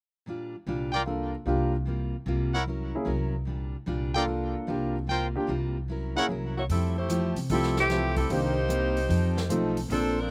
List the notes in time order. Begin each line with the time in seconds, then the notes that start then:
0.26 A#2 G3 D4 F4
0.67 C2 A#2 G3 D4 F4
0.92 F4 A#4 D5 G5
1.06 G3 A#3 D4 F4 A4 A#4
1.46 C2 G3 A#3 D4 F4 G4 A#4
1.85 C3 G3 A#3 F4
2.26 C2 C3 G3 A#3 F4
2.53 E4 A#4 C#5 F#5
2.66 F#3 C#4 E4 A#4
2.95 A#3 C#4 E4 G#4
3.05 C2 F#3 C#4 E4 A#4
3.45 A#2 G3 D4 F4
3.86 C2 A#2 G3 D4 F4
4.14 A#3 D4 F4 A4 A#4 D5 G5
4.26 G3 D4 F4 A#4
4.67 C2 G3 A#3 D4 F4 G4 A#4
5.07 C3 G3 A#3 F4 A#4 C5 G5
5.36 A#3 D4 F4 G4
5.47 C2 C3 G3 A#3 F4
5.88 F#3 C#4 E4 A#4
6.16 A#3 C#4 E4 G#4 A#4 C#5 F#5
6.29 C2 F#3 C#4 E4 A#4
6.57 A#3 E4 F#4 C#5
6.69 F2 F3 G3 A3 C4 E4 G4 A4, kick, open hi-hat
6.98 A3 E4 G4 C5
7.09 F3 A3 E4 G4, closed hi-hat
7.36 C3, open hi-hat
7.49 C2 F3 G3 A3 C4 E4 G4 A4, kick, open hi-hat
7.63 snare
7.77 E3 A3 C4 G4, snare
7.89 F3 A3 C4 E4 G4, snare, closed hi-hat
8.16 G3 C4 E4 A4, kick, open hi-hat
8.29 C2 C3 D#3 G3 A#3 C4 D4 D#4 G4 C5, kick, open hi-hat
8.68 C3 G3 A#3 D#4, closed hi-hat
8.97 open hi-hat
9.07 F2 F3 C4 D#4 A4, kick, open hi-hat
9.37 snare
9.49 B1 F3 A3 C4 D#4 A4, closed hi-hat
9.77 open hi-hat
9.88 A#1 F3 A#3 C4 D4 A4, kick, open hi-hat
9.93 C4 C5
10.19 F3 C4 D4 A#4